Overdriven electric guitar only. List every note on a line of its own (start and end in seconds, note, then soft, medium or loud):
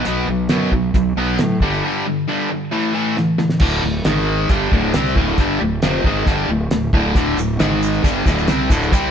0.05 0.26 B2 medium
0.05 0.27 F#3 medium
0.05 0.27 B3 medium
0.28 0.48 B2 medium
0.28 0.48 F#3 medium
0.50 0.71 B2 medium
0.50 0.71 F#3 medium
0.50 0.71 B3 medium
0.73 0.93 B2 medium
0.73 0.93 F#3 medium
0.95 1.15 B2 medium
0.95 1.15 F#3 medium
1.17 1.38 B2 medium
1.17 1.38 F#3 medium
1.17 1.38 B3 medium
1.40 1.60 B2 medium
1.40 1.60 F#3 medium
1.62 1.83 G2 medium
1.62 1.83 D3 medium
1.62 1.83 G3 medium
1.84 2.05 G2 medium
1.84 2.05 D3 medium
1.84 2.05 G3 medium
2.06 2.26 G2 medium
2.06 2.26 D3 medium
2.28 2.49 G2 medium
2.28 2.49 D3 medium
2.28 2.49 G3 medium
2.50 2.70 G2 medium
2.50 2.70 D3 medium
2.72 2.93 A2 medium
2.72 2.93 E3 medium
2.72 2.94 A3 medium
2.94 3.15 A2 medium
2.94 3.16 E3 medium
2.94 3.16 A3 medium
3.17 3.37 A2 medium
3.17 3.37 E3 medium
3.38 3.59 A2 medium
3.38 3.59 E3 medium
3.61 3.82 D2 medium
3.61 3.83 A2 loud
3.61 3.83 D3 loud
3.83 4.01 D2 medium
3.83 4.01 A2 medium
4.05 4.49 G#2 medium
4.05 4.49 D#3 medium
4.05 4.50 G#3 medium
4.50 4.71 G2 medium
4.50 4.71 D3 medium
4.50 4.72 G3 loud
4.72 4.94 D2 medium
4.72 4.94 A2 loud
4.72 4.94 D3 medium
4.95 5.15 C3 loud
4.95 5.16 G3 medium
4.95 5.16 C4 loud
5.16 5.38 D2 medium
5.16 5.38 A2 medium
5.16 5.38 D3 loud
5.38 5.60 G2 medium
5.38 5.60 D3 medium
5.38 5.61 G3 medium
5.60 5.78 D2 medium
5.60 5.79 A2 medium
5.83 6.04 F2 medium
5.83 6.05 C3 medium
5.83 6.05 F3 loud
6.05 6.27 G#2 medium
6.05 6.27 D#3 medium
6.05 6.27 G#3 loud
6.27 6.49 G2 medium
6.27 6.49 D3 medium
6.27 6.49 G3 loud
6.50 6.67 D2 medium
6.50 6.67 A2 medium
6.72 6.89 D2 medium
6.72 6.89 A2 medium
6.94 7.15 D2 medium
6.94 7.15 A2 loud
6.94 7.16 D3 loud
7.16 7.37 D2 medium
7.16 7.38 A2 medium
7.16 7.38 D3 loud
7.38 7.56 D2 medium
7.38 7.56 A2 medium
7.59 8.03 G#2 medium
7.59 8.04 D#3 medium
7.59 8.04 G#3 medium
8.03 8.25 G2 loud
8.03 8.26 D3 loud
8.03 8.26 G3 loud
8.26 8.48 D2 medium
8.26 8.48 A2 loud
8.26 8.48 D3 loud
8.48 8.70 C3 medium
8.48 8.70 G3 medium
8.48 8.70 C4 loud
8.71 8.93 D2 medium
8.71 8.93 A2 medium
8.71 8.93 D3 loud
8.93 9.11 C3 medium
8.93 9.11 G3 medium
8.93 9.11 C4 medium